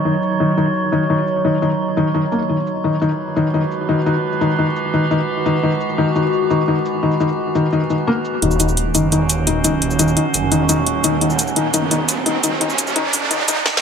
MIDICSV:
0, 0, Header, 1, 6, 480
1, 0, Start_track
1, 0, Key_signature, -6, "minor"
1, 0, Tempo, 348837
1, 70, Time_signature, 4, 2, 24, 8
1, 19009, End_track
2, 0, Start_track
2, 0, Title_t, "Synth drone"
2, 0, Program_c, 0, 95
2, 0, Note_on_c, 0, 54, 84
2, 0, Note_on_c, 0, 63, 77
2, 0, Note_on_c, 0, 73, 90
2, 3855, Note_off_c, 0, 54, 0
2, 3855, Note_off_c, 0, 63, 0
2, 3855, Note_off_c, 0, 73, 0
2, 3911, Note_on_c, 0, 56, 86
2, 3912, Note_on_c, 0, 66, 80
2, 3912, Note_on_c, 0, 71, 98
2, 11536, Note_off_c, 0, 56, 0
2, 11536, Note_off_c, 0, 66, 0
2, 11536, Note_off_c, 0, 71, 0
2, 11590, Note_on_c, 0, 51, 87
2, 11590, Note_on_c, 0, 61, 78
2, 11590, Note_on_c, 0, 66, 92
2, 18735, Note_off_c, 0, 51, 0
2, 18735, Note_off_c, 0, 61, 0
2, 18735, Note_off_c, 0, 66, 0
2, 19009, End_track
3, 0, Start_track
3, 0, Title_t, "Felt piano"
3, 0, Program_c, 1, 0
3, 70, Note_on_c, 1, 51, 94
3, 157, Note_off_c, 1, 51, 0
3, 551, Note_on_c, 1, 51, 97
3, 682, Note_off_c, 1, 51, 0
3, 790, Note_on_c, 1, 51, 97
3, 878, Note_off_c, 1, 51, 0
3, 1270, Note_on_c, 1, 51, 98
3, 1401, Note_off_c, 1, 51, 0
3, 1510, Note_on_c, 1, 51, 96
3, 1598, Note_off_c, 1, 51, 0
3, 1990, Note_on_c, 1, 51, 93
3, 2122, Note_off_c, 1, 51, 0
3, 2230, Note_on_c, 1, 51, 98
3, 2318, Note_off_c, 1, 51, 0
3, 2710, Note_on_c, 1, 51, 96
3, 2842, Note_off_c, 1, 51, 0
3, 2950, Note_on_c, 1, 51, 95
3, 3038, Note_off_c, 1, 51, 0
3, 3190, Note_on_c, 1, 58, 72
3, 3278, Note_off_c, 1, 58, 0
3, 3430, Note_on_c, 1, 51, 73
3, 3518, Note_off_c, 1, 51, 0
3, 3910, Note_on_c, 1, 51, 93
3, 4041, Note_off_c, 1, 51, 0
3, 4150, Note_on_c, 1, 51, 96
3, 4238, Note_off_c, 1, 51, 0
3, 4629, Note_on_c, 1, 51, 98
3, 4761, Note_off_c, 1, 51, 0
3, 4870, Note_on_c, 1, 51, 93
3, 4957, Note_off_c, 1, 51, 0
3, 5349, Note_on_c, 1, 51, 97
3, 5481, Note_off_c, 1, 51, 0
3, 5590, Note_on_c, 1, 51, 96
3, 5678, Note_off_c, 1, 51, 0
3, 6070, Note_on_c, 1, 51, 96
3, 6201, Note_off_c, 1, 51, 0
3, 6310, Note_on_c, 1, 51, 97
3, 6398, Note_off_c, 1, 51, 0
3, 6790, Note_on_c, 1, 51, 93
3, 6922, Note_off_c, 1, 51, 0
3, 7030, Note_on_c, 1, 51, 98
3, 7118, Note_off_c, 1, 51, 0
3, 7510, Note_on_c, 1, 51, 95
3, 7641, Note_off_c, 1, 51, 0
3, 7749, Note_on_c, 1, 51, 96
3, 7837, Note_off_c, 1, 51, 0
3, 8230, Note_on_c, 1, 51, 100
3, 8361, Note_off_c, 1, 51, 0
3, 8470, Note_on_c, 1, 51, 94
3, 8557, Note_off_c, 1, 51, 0
3, 8950, Note_on_c, 1, 51, 95
3, 9081, Note_off_c, 1, 51, 0
3, 9190, Note_on_c, 1, 51, 98
3, 9278, Note_off_c, 1, 51, 0
3, 9671, Note_on_c, 1, 51, 94
3, 9802, Note_off_c, 1, 51, 0
3, 9911, Note_on_c, 1, 51, 96
3, 9998, Note_off_c, 1, 51, 0
3, 10390, Note_on_c, 1, 51, 94
3, 10522, Note_off_c, 1, 51, 0
3, 10630, Note_on_c, 1, 51, 97
3, 10718, Note_off_c, 1, 51, 0
3, 10870, Note_on_c, 1, 51, 93
3, 10923, Note_off_c, 1, 51, 0
3, 11109, Note_on_c, 1, 58, 101
3, 11162, Note_off_c, 1, 58, 0
3, 11589, Note_on_c, 1, 51, 92
3, 11721, Note_off_c, 1, 51, 0
3, 11829, Note_on_c, 1, 51, 93
3, 11917, Note_off_c, 1, 51, 0
3, 12309, Note_on_c, 1, 51, 101
3, 12441, Note_off_c, 1, 51, 0
3, 12550, Note_on_c, 1, 51, 99
3, 12637, Note_off_c, 1, 51, 0
3, 13029, Note_on_c, 1, 51, 95
3, 13161, Note_off_c, 1, 51, 0
3, 13269, Note_on_c, 1, 51, 95
3, 13357, Note_off_c, 1, 51, 0
3, 13749, Note_on_c, 1, 51, 99
3, 13881, Note_off_c, 1, 51, 0
3, 13989, Note_on_c, 1, 51, 100
3, 14077, Note_off_c, 1, 51, 0
3, 14469, Note_on_c, 1, 51, 96
3, 14601, Note_off_c, 1, 51, 0
3, 14709, Note_on_c, 1, 51, 102
3, 14797, Note_off_c, 1, 51, 0
3, 15190, Note_on_c, 1, 51, 100
3, 15321, Note_off_c, 1, 51, 0
3, 15429, Note_on_c, 1, 51, 88
3, 15517, Note_off_c, 1, 51, 0
3, 15909, Note_on_c, 1, 51, 95
3, 16041, Note_off_c, 1, 51, 0
3, 16149, Note_on_c, 1, 51, 95
3, 16237, Note_off_c, 1, 51, 0
3, 16389, Note_on_c, 1, 51, 96
3, 16477, Note_off_c, 1, 51, 0
3, 16869, Note_on_c, 1, 51, 97
3, 17001, Note_off_c, 1, 51, 0
3, 17110, Note_on_c, 1, 51, 97
3, 17198, Note_off_c, 1, 51, 0
3, 17350, Note_on_c, 1, 51, 96
3, 17438, Note_off_c, 1, 51, 0
3, 17830, Note_on_c, 1, 51, 104
3, 17918, Note_off_c, 1, 51, 0
3, 18310, Note_on_c, 1, 51, 102
3, 18398, Note_off_c, 1, 51, 0
3, 18550, Note_on_c, 1, 51, 105
3, 18638, Note_off_c, 1, 51, 0
3, 19009, End_track
4, 0, Start_track
4, 0, Title_t, "Detuned saw bass"
4, 0, Program_c, 2, 39
4, 11590, Note_on_c, 2, 27, 100
4, 12291, Note_off_c, 2, 27, 0
4, 12310, Note_on_c, 2, 30, 98
4, 12531, Note_off_c, 2, 30, 0
4, 12549, Note_on_c, 2, 28, 103
4, 12771, Note_off_c, 2, 28, 0
4, 12790, Note_on_c, 2, 27, 92
4, 13491, Note_off_c, 2, 27, 0
4, 13509, Note_on_c, 2, 27, 97
4, 13970, Note_off_c, 2, 27, 0
4, 14229, Note_on_c, 2, 30, 102
4, 14450, Note_off_c, 2, 30, 0
4, 14469, Note_on_c, 2, 28, 98
4, 14930, Note_off_c, 2, 28, 0
4, 14949, Note_on_c, 2, 27, 91
4, 15411, Note_off_c, 2, 27, 0
4, 15429, Note_on_c, 2, 27, 101
4, 16130, Note_off_c, 2, 27, 0
4, 16149, Note_on_c, 2, 30, 98
4, 16371, Note_off_c, 2, 30, 0
4, 16389, Note_on_c, 2, 28, 99
4, 16610, Note_off_c, 2, 28, 0
4, 16629, Note_on_c, 2, 27, 96
4, 17330, Note_off_c, 2, 27, 0
4, 17349, Note_on_c, 2, 27, 99
4, 17811, Note_off_c, 2, 27, 0
4, 18070, Note_on_c, 2, 30, 104
4, 18291, Note_off_c, 2, 30, 0
4, 18310, Note_on_c, 2, 27, 100
4, 18790, Note_off_c, 2, 27, 0
4, 19009, End_track
5, 0, Start_track
5, 0, Title_t, "Riser"
5, 0, Program_c, 3, 103
5, 11590, Note_on_c, 3, 60, 79
5, 18790, Note_off_c, 3, 60, 0
5, 19009, End_track
6, 0, Start_track
6, 0, Title_t, "Drums"
6, 191, Note_on_c, 9, 69, 26
6, 311, Note_off_c, 9, 69, 0
6, 311, Note_on_c, 9, 69, 56
6, 431, Note_off_c, 9, 69, 0
6, 431, Note_on_c, 9, 69, 25
6, 568, Note_off_c, 9, 69, 0
6, 790, Note_on_c, 9, 69, 51
6, 928, Note_off_c, 9, 69, 0
6, 1031, Note_on_c, 9, 69, 27
6, 1168, Note_off_c, 9, 69, 0
6, 1271, Note_on_c, 9, 69, 54
6, 1408, Note_off_c, 9, 69, 0
6, 1750, Note_on_c, 9, 69, 54
6, 1888, Note_off_c, 9, 69, 0
6, 2111, Note_on_c, 9, 69, 27
6, 2231, Note_off_c, 9, 69, 0
6, 2231, Note_on_c, 9, 69, 57
6, 2351, Note_off_c, 9, 69, 0
6, 2351, Note_on_c, 9, 69, 26
6, 2488, Note_off_c, 9, 69, 0
6, 2710, Note_on_c, 9, 69, 52
6, 2848, Note_off_c, 9, 69, 0
6, 2950, Note_on_c, 9, 69, 27
6, 3088, Note_off_c, 9, 69, 0
6, 3190, Note_on_c, 9, 69, 55
6, 3328, Note_off_c, 9, 69, 0
6, 3671, Note_on_c, 9, 69, 54
6, 3808, Note_off_c, 9, 69, 0
6, 4031, Note_on_c, 9, 69, 27
6, 4151, Note_off_c, 9, 69, 0
6, 4151, Note_on_c, 9, 69, 58
6, 4271, Note_off_c, 9, 69, 0
6, 4271, Note_on_c, 9, 69, 27
6, 4409, Note_off_c, 9, 69, 0
6, 4630, Note_on_c, 9, 69, 56
6, 4768, Note_off_c, 9, 69, 0
6, 4870, Note_on_c, 9, 69, 28
6, 5008, Note_off_c, 9, 69, 0
6, 5111, Note_on_c, 9, 69, 57
6, 5248, Note_off_c, 9, 69, 0
6, 5591, Note_on_c, 9, 69, 57
6, 5729, Note_off_c, 9, 69, 0
6, 5951, Note_on_c, 9, 69, 28
6, 6071, Note_off_c, 9, 69, 0
6, 6071, Note_on_c, 9, 69, 62
6, 6191, Note_off_c, 9, 69, 0
6, 6191, Note_on_c, 9, 69, 28
6, 6328, Note_off_c, 9, 69, 0
6, 6550, Note_on_c, 9, 69, 58
6, 6688, Note_off_c, 9, 69, 0
6, 6791, Note_on_c, 9, 69, 29
6, 6928, Note_off_c, 9, 69, 0
6, 7031, Note_on_c, 9, 69, 58
6, 7169, Note_off_c, 9, 69, 0
6, 7510, Note_on_c, 9, 69, 59
6, 7648, Note_off_c, 9, 69, 0
6, 7871, Note_on_c, 9, 69, 29
6, 7990, Note_off_c, 9, 69, 0
6, 7990, Note_on_c, 9, 69, 62
6, 8110, Note_off_c, 9, 69, 0
6, 8110, Note_on_c, 9, 69, 28
6, 8248, Note_off_c, 9, 69, 0
6, 8471, Note_on_c, 9, 69, 61
6, 8608, Note_off_c, 9, 69, 0
6, 8711, Note_on_c, 9, 69, 30
6, 8848, Note_off_c, 9, 69, 0
6, 8951, Note_on_c, 9, 69, 60
6, 9089, Note_off_c, 9, 69, 0
6, 9430, Note_on_c, 9, 69, 59
6, 9568, Note_off_c, 9, 69, 0
6, 9790, Note_on_c, 9, 69, 28
6, 9910, Note_off_c, 9, 69, 0
6, 9910, Note_on_c, 9, 69, 61
6, 10030, Note_off_c, 9, 69, 0
6, 10030, Note_on_c, 9, 69, 27
6, 10168, Note_off_c, 9, 69, 0
6, 10390, Note_on_c, 9, 69, 57
6, 10528, Note_off_c, 9, 69, 0
6, 10630, Note_on_c, 9, 69, 29
6, 10768, Note_off_c, 9, 69, 0
6, 10870, Note_on_c, 9, 69, 59
6, 11007, Note_off_c, 9, 69, 0
6, 11350, Note_on_c, 9, 69, 60
6, 11487, Note_off_c, 9, 69, 0
6, 11590, Note_on_c, 9, 42, 82
6, 11710, Note_on_c, 9, 69, 28
6, 11727, Note_off_c, 9, 42, 0
6, 11831, Note_off_c, 9, 69, 0
6, 11831, Note_on_c, 9, 42, 98
6, 11831, Note_on_c, 9, 69, 59
6, 11950, Note_off_c, 9, 69, 0
6, 11950, Note_on_c, 9, 69, 28
6, 11968, Note_off_c, 9, 42, 0
6, 12070, Note_on_c, 9, 42, 80
6, 12088, Note_off_c, 9, 69, 0
6, 12208, Note_off_c, 9, 42, 0
6, 12310, Note_on_c, 9, 42, 89
6, 12310, Note_on_c, 9, 69, 58
6, 12447, Note_off_c, 9, 42, 0
6, 12447, Note_off_c, 9, 69, 0
6, 12550, Note_on_c, 9, 42, 82
6, 12550, Note_on_c, 9, 69, 29
6, 12688, Note_off_c, 9, 42, 0
6, 12688, Note_off_c, 9, 69, 0
6, 12789, Note_on_c, 9, 42, 97
6, 12789, Note_on_c, 9, 69, 61
6, 12927, Note_off_c, 9, 42, 0
6, 12927, Note_off_c, 9, 69, 0
6, 13030, Note_on_c, 9, 42, 86
6, 13167, Note_off_c, 9, 42, 0
6, 13270, Note_on_c, 9, 42, 93
6, 13270, Note_on_c, 9, 69, 59
6, 13407, Note_off_c, 9, 42, 0
6, 13407, Note_off_c, 9, 69, 0
6, 13510, Note_on_c, 9, 42, 80
6, 13630, Note_on_c, 9, 69, 27
6, 13648, Note_off_c, 9, 42, 0
6, 13750, Note_off_c, 9, 69, 0
6, 13750, Note_on_c, 9, 42, 96
6, 13750, Note_on_c, 9, 69, 58
6, 13869, Note_off_c, 9, 69, 0
6, 13869, Note_on_c, 9, 69, 26
6, 13887, Note_off_c, 9, 42, 0
6, 13990, Note_on_c, 9, 42, 82
6, 14007, Note_off_c, 9, 69, 0
6, 14127, Note_off_c, 9, 42, 0
6, 14230, Note_on_c, 9, 42, 95
6, 14230, Note_on_c, 9, 69, 55
6, 14367, Note_off_c, 9, 42, 0
6, 14367, Note_off_c, 9, 69, 0
6, 14470, Note_on_c, 9, 42, 82
6, 14470, Note_on_c, 9, 69, 27
6, 14607, Note_off_c, 9, 42, 0
6, 14607, Note_off_c, 9, 69, 0
6, 14710, Note_on_c, 9, 42, 97
6, 14710, Note_on_c, 9, 69, 57
6, 14848, Note_off_c, 9, 42, 0
6, 14848, Note_off_c, 9, 69, 0
6, 14950, Note_on_c, 9, 42, 82
6, 15088, Note_off_c, 9, 42, 0
6, 15190, Note_on_c, 9, 42, 93
6, 15190, Note_on_c, 9, 69, 57
6, 15328, Note_off_c, 9, 42, 0
6, 15328, Note_off_c, 9, 69, 0
6, 15430, Note_on_c, 9, 42, 79
6, 15550, Note_on_c, 9, 69, 28
6, 15568, Note_off_c, 9, 42, 0
6, 15670, Note_off_c, 9, 69, 0
6, 15670, Note_on_c, 9, 42, 96
6, 15670, Note_on_c, 9, 69, 57
6, 15790, Note_off_c, 9, 69, 0
6, 15790, Note_on_c, 9, 69, 26
6, 15808, Note_off_c, 9, 42, 0
6, 15910, Note_on_c, 9, 42, 78
6, 15928, Note_off_c, 9, 69, 0
6, 16047, Note_off_c, 9, 42, 0
6, 16150, Note_on_c, 9, 42, 90
6, 16150, Note_on_c, 9, 69, 54
6, 16288, Note_off_c, 9, 42, 0
6, 16288, Note_off_c, 9, 69, 0
6, 16390, Note_on_c, 9, 42, 83
6, 16390, Note_on_c, 9, 69, 28
6, 16528, Note_off_c, 9, 42, 0
6, 16528, Note_off_c, 9, 69, 0
6, 16630, Note_on_c, 9, 42, 94
6, 16630, Note_on_c, 9, 69, 60
6, 16767, Note_off_c, 9, 42, 0
6, 16767, Note_off_c, 9, 69, 0
6, 16870, Note_on_c, 9, 42, 79
6, 17008, Note_off_c, 9, 42, 0
6, 17110, Note_on_c, 9, 42, 93
6, 17110, Note_on_c, 9, 69, 56
6, 17248, Note_off_c, 9, 42, 0
6, 17248, Note_off_c, 9, 69, 0
6, 17351, Note_on_c, 9, 42, 77
6, 17471, Note_on_c, 9, 69, 28
6, 17488, Note_off_c, 9, 42, 0
6, 17591, Note_off_c, 9, 69, 0
6, 17591, Note_on_c, 9, 42, 94
6, 17591, Note_on_c, 9, 69, 59
6, 17711, Note_off_c, 9, 69, 0
6, 17711, Note_on_c, 9, 69, 27
6, 17728, Note_off_c, 9, 42, 0
6, 17830, Note_on_c, 9, 42, 75
6, 17848, Note_off_c, 9, 69, 0
6, 17968, Note_off_c, 9, 42, 0
6, 18071, Note_on_c, 9, 46, 82
6, 18071, Note_on_c, 9, 69, 59
6, 18209, Note_off_c, 9, 46, 0
6, 18209, Note_off_c, 9, 69, 0
6, 18311, Note_on_c, 9, 42, 79
6, 18311, Note_on_c, 9, 69, 29
6, 18449, Note_off_c, 9, 42, 0
6, 18449, Note_off_c, 9, 69, 0
6, 18551, Note_on_c, 9, 42, 88
6, 18551, Note_on_c, 9, 69, 59
6, 18688, Note_off_c, 9, 42, 0
6, 18688, Note_off_c, 9, 69, 0
6, 18791, Note_on_c, 9, 38, 70
6, 18929, Note_off_c, 9, 38, 0
6, 18951, Note_on_c, 9, 38, 85
6, 19009, Note_off_c, 9, 38, 0
6, 19009, End_track
0, 0, End_of_file